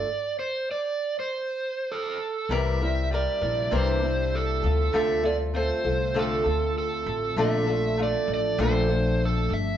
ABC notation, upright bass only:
X:1
M:4/4
L:1/16
Q:"Swing 16ths" 1/4=98
K:Cmix
V:1 name="Upright bass" clef=bass
z16 | C,,4- C,, z B,,,2 C,,6 D,,2 | D,,4- D,, z C,,4 D,,4 A,,,2 | B,,,4- B,,, z A,,,2 B,,,6 G,,,2 |]